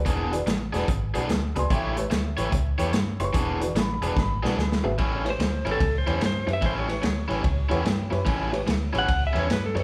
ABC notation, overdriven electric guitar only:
X:1
M:4/4
L:1/8
Q:"Swing" 1/4=146
K:Amix
V:1 name="Overdriven electric guitar"
[E,B,D^G] z2 [E,B,DG] z [E,B,DG] z2 | [A,EGc] z2 [A,EGc] z [A,EGc] z2 | [E,B,D^G] z2 [E,B,DG] z [E,B,DG] z2 | [A,,G,CE] z2 [A,,G,CE] z [A,,G,CE] z2 |
[A,,G,CE] z2 [A,,G,CE] z [A,,G,CE] z2 | [A,,G,CE] z2 [A,,G,CE] z [A,,G,CE] z2 |]